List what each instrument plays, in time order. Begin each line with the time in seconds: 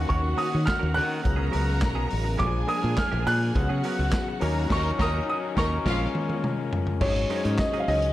Already playing: tine electric piano D#3 A#3 C#4 F#4, string section D#3 C#4 F#4, violin section F#4 F#5
0.09 fingered electric bass D#2, clean electric guitar A#3 C#4 F#4 A#4, grand piano C#6, kick, closed hi-hat
0.23 muted clean electric guitar stroke
0.37 clean electric guitar A#3 C#4 F#4 C#5, grand piano D#6, open hi-hat
0.52 fingered electric bass D#3, clean electric guitar A#3 C#4 F#4 C#5
0.66 grand piano F6, kick, snare, clap, closed hi-hat
0.79 fingered electric bass D#2, clean electric guitar A#3 C#4 F#4 A#4
0.94 fingered electric bass D#3, clean electric guitar A#3 C#4 F#4 A#4, grand piano F#6, open hi-hat
1.08 muted clean electric guitar stroke
1.22 fingered electric bass C#2, string section C#3 B3 F#4, tine electric piano F#3 B3 C#4 G#4, violin section A#4 A#5, muted clean electric guitar stroke, kick, closed hi-hat
1.36 clean electric guitar F#3 B3 C#4 G#4
1.51 fingered electric bass C#2, clean electric guitar F#3 B3 C#4 A#4, open hi-hat
1.66 muted clean electric guitar stroke
1.82 fingered electric bass B1, muted clean electric guitar stroke, kick, snare, clap, closed hi-hat
1.95 clean electric guitar F#3 B3 C#4 G#4
2.10 fingered electric bass A1, muted clean electric guitar stroke, open hi-hat
2.24 muted clean electric guitar stroke
2.37 fingered electric bass A#1, clean electric guitar F3 A#3 D4 G#4, tine electric piano F3 A#3 D4 F#4, string section G#3 A#3 D4, violin section G#4 G#5, grand piano D6, kick, closed hi-hat
2.48 tine electric piano G#4, muted clean electric guitar stroke
2.67 clean electric guitar F3 A#3 D4 A#4, grand piano D#6, open hi-hat
2.82 fingered electric bass A#2, clean electric guitar F3 A#3 D4 A#4
2.98 grand piano F6, kick, snare, clap, closed hi-hat
3.11 fingered electric bass A#1, clean electric guitar F3 A#3 D4 G#4
3.26 fingered electric bass A#2, clean electric guitar F3 A#3 D4 G#4, grand piano F#6, open hi-hat
3.41 muted clean electric guitar stroke
3.55 fingered electric bass C#2, string section C#3 B3 F#4, tine electric piano F3 B3 C#4 G#4, violin section F#4 F#5, muted clean electric guitar stroke, kick, closed hi-hat
3.61 tine electric piano F#3
3.69 fingered electric bass C#3, clean electric guitar F#3 B3 C#4 G#4
3.84 clean electric guitar F#3 B3 C#4 A#4, open hi-hat
3.99 fingered electric bass C#2, muted clean electric guitar stroke
4.13 muted clean electric guitar stroke, kick, snare, clap, closed hi-hat
4.28 muted clean electric guitar stroke
4.40 fingered electric bass D#2, string section D#3 C#4, tine electric piano F#3 C#4 D#4 A#4, clean electric guitar A#3 C#4 F#4 A#4, violin section A#4 A#5, open hi-hat
4.56 muted clean electric guitar stroke
4.69 fingered electric bass D#2, tine electric piano F#3 C#4 D#4 A#4, clean electric guitar A#3 C#4 F#4 A#4, violin section A#4 A#5, grand piano C#6, kick, snare, crash
4.98 fingered electric bass D#2, tine electric piano F#3 C#4 D#4 A#4, clean electric guitar A#3 C#4 F#4 C#5, violin section A#4 A#5, grand piano D#6, kick, snare
5.30 grand piano D#6
5.55 fingered electric bass D#2, tine electric piano F#3 C#4 D#4 A#4, clean electric guitar A#3 C#4 F#4 A#4, violin section A#4 A#5, grand piano C#6, kick, snare
5.85 fingered electric bass A#1, tine electric piano G#3 C#4 F4 A#4, clean electric guitar G#3 C#4 F4 A#4, string section G#3 A#3, violin section F4 F5, kick, snare, crash
6.15 high tom
6.29 high tom
6.44 mid tom
6.73 floor tom
6.87 floor tom
7.01 fingered electric bass G#1, clean electric guitar F#3 C#4 D#4 G#4, string section F#3 G#3 C#4, tine electric piano G#3 C#4 D#4 F#4 C#5, grand piano C#5, kick, crash
7.16 muted clean electric guitar stroke, closed hi-hat
7.29 clean electric guitar F#3 C#4 D#4 A#4, tine electric piano G#3 C#4 D#4 F#4 C5, open hi-hat
7.37 tine electric piano C#5
7.44 fingered electric bass G#2, clean electric guitar F#3 C#4 D#4 A#4, closed hi-hat
7.59 grand piano D#5, kick, snare, clap, closed hi-hat
7.73 clean electric guitar F#3 C#4 D#4 G#4, closed hi-hat
7.80 grand piano F5
7.87 fingered electric bass C#2, clean electric guitar F#3 C#4 D#4 G#4, grand piano D#5, open hi-hat
8.02 closed hi-hat